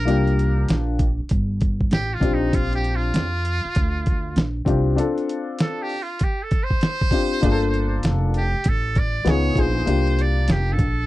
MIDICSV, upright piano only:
0, 0, Header, 1, 2, 480
1, 0, Start_track
1, 0, Tempo, 612245
1, 66, Time_signature, 4, 2, 24, 8
1, 8674, End_track
2, 0, Start_track
2, 0, Title_t, "Upright piano"
2, 0, Program_c, 0, 0
2, 42, Note_on_c, 0, 58, 78
2, 54, Note_on_c, 0, 62, 78
2, 65, Note_on_c, 0, 65, 69
2, 77, Note_on_c, 0, 67, 89
2, 789, Note_off_c, 0, 58, 0
2, 795, Note_off_c, 0, 62, 0
2, 800, Note_off_c, 0, 65, 0
2, 806, Note_off_c, 0, 67, 0
2, 1725, Note_on_c, 0, 60, 76
2, 1735, Note_on_c, 0, 62, 69
2, 1745, Note_on_c, 0, 65, 62
2, 1755, Note_on_c, 0, 67, 73
2, 2517, Note_off_c, 0, 60, 0
2, 2522, Note_off_c, 0, 62, 0
2, 2527, Note_off_c, 0, 65, 0
2, 2532, Note_off_c, 0, 67, 0
2, 3646, Note_on_c, 0, 60, 81
2, 3658, Note_on_c, 0, 62, 70
2, 3669, Note_on_c, 0, 65, 78
2, 3678, Note_on_c, 0, 67, 87
2, 3855, Note_off_c, 0, 60, 0
2, 3861, Note_off_c, 0, 62, 0
2, 3866, Note_off_c, 0, 65, 0
2, 3871, Note_off_c, 0, 67, 0
2, 3881, Note_on_c, 0, 60, 75
2, 3891, Note_on_c, 0, 62, 83
2, 3903, Note_on_c, 0, 65, 74
2, 3913, Note_on_c, 0, 69, 92
2, 4628, Note_off_c, 0, 60, 0
2, 4634, Note_off_c, 0, 62, 0
2, 4639, Note_off_c, 0, 65, 0
2, 4644, Note_off_c, 0, 69, 0
2, 5570, Note_on_c, 0, 60, 68
2, 5579, Note_on_c, 0, 62, 63
2, 5592, Note_on_c, 0, 65, 66
2, 5599, Note_on_c, 0, 67, 74
2, 5777, Note_off_c, 0, 60, 0
2, 5781, Note_off_c, 0, 62, 0
2, 5788, Note_off_c, 0, 65, 0
2, 5791, Note_off_c, 0, 67, 0
2, 5811, Note_on_c, 0, 58, 79
2, 5818, Note_on_c, 0, 62, 83
2, 5832, Note_on_c, 0, 65, 76
2, 5840, Note_on_c, 0, 68, 71
2, 5892, Note_on_c, 0, 69, 100
2, 5898, Note_off_c, 0, 68, 0
2, 6553, Note_off_c, 0, 58, 0
2, 6557, Note_off_c, 0, 62, 0
2, 6564, Note_off_c, 0, 65, 0
2, 6594, Note_off_c, 0, 69, 0
2, 7249, Note_on_c, 0, 59, 85
2, 7260, Note_on_c, 0, 63, 67
2, 7271, Note_on_c, 0, 65, 71
2, 7277, Note_on_c, 0, 68, 82
2, 7463, Note_off_c, 0, 59, 0
2, 7468, Note_off_c, 0, 63, 0
2, 7474, Note_off_c, 0, 65, 0
2, 7477, Note_off_c, 0, 68, 0
2, 7481, Note_on_c, 0, 59, 64
2, 7492, Note_on_c, 0, 63, 60
2, 7504, Note_on_c, 0, 65, 63
2, 7514, Note_on_c, 0, 68, 79
2, 7692, Note_off_c, 0, 59, 0
2, 7698, Note_off_c, 0, 63, 0
2, 7703, Note_off_c, 0, 65, 0
2, 7709, Note_off_c, 0, 68, 0
2, 7726, Note_on_c, 0, 58, 70
2, 7734, Note_on_c, 0, 62, 65
2, 7743, Note_on_c, 0, 65, 60
2, 7754, Note_on_c, 0, 67, 82
2, 8471, Note_off_c, 0, 58, 0
2, 8475, Note_off_c, 0, 62, 0
2, 8480, Note_off_c, 0, 65, 0
2, 8485, Note_off_c, 0, 67, 0
2, 8674, End_track
0, 0, End_of_file